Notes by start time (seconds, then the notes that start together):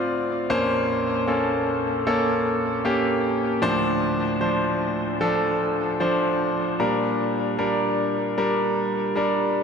Already playing: D2 A2 C4 F4 D5 E5
0.50 A#1 F2 A#3 C#4 C5
1.28 A#3 C#4 A4
2.07 A#3 C#4 A4
2.85 A#3 C#4 G4
3.62 D2 A2 F3 D4 C5
4.41 F3 D4 C5
5.21 F3 D4 A4
6.00 F3 D4 C5
6.80 A#2 G3 D4 A#4
7.58 G3 D4 A#4
8.38 G3 D4 A#4
9.15 G3 D4 A#4